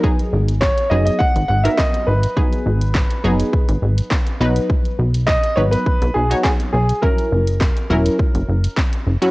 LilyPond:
<<
  \new Staff \with { instrumentName = "Grand piano" } { \time 4/4 \key gis \minor \tempo 4 = 103 r4 cis''8 dis''16 dis''16 fis''8 fis''16 e''16 dis''8 b'8~ | b'2.~ b'8 r8 | r4 dis''8 cis''16 b'8. gis'16 fis'16 gis'8 gis'8 | ais'2. r4 | }
  \new Staff \with { instrumentName = "Synth pluck" } { \time 4/4 \key gis \minor <fis b dis' gis'>8. r8. <fis b dis' gis'>8. r8 <fis b dis' ais'>8. r8 | <fis b dis' gis'>8. r8. <fis b dis' gis'>4~ <fis b dis' gis'>16 r8. <fis b dis' b'>8~ | <fis b dis' b'>4 r8 <fis b dis' b'>8. r8 <fis b dis' cis''>8. r8 | <fis cis' e' ais'>8. r8. <fis cis' e' ais'>4~ <fis cis' e' ais'>16 r4 <fis cis' e' fis'>16 | }
  \new Staff \with { instrumentName = "Analog synth bass" } { \clef bass \time 4/4 \key gis \minor r8 gis,,4 fis,,8 r16 gis,,16 gis,,8 r8 gis,,8 | r8 gis,,4 fis,,8 r16 gis,,16 gis,,8 r8 b,,8 | r8 b,,4 gis,,8 r16 b,,16 b,,8 r8 b,,8 | r8 fis,,4 e,,8 r16 fis,,16 fis,,8 r8 fis,,16 r16 | }
  \new DrumStaff \with { instrumentName = "Drums" } \drummode { \time 4/4 bd16 hh8 hh16 <hc bd sn>16 hh8 hh16 bd16 hh8 hh16 <hc bd sn>16 hh8 hh16 | bd16 hh8 hh16 <hc bd sn>16 hh8 hh16 bd16 hh8 hh16 <hc bd sn>16 hh8 hh16 | bd16 hh8 hh16 <hc bd sn>16 hh8 hh16 bd16 hh8 hh16 <hc bd sn>16 hh8 hh16 | bd16 hh8 hh16 <hc bd sn>16 hh8 hh16 bd16 hh8 hh16 <hc bd sn>16 hh8 hh16 | }
>>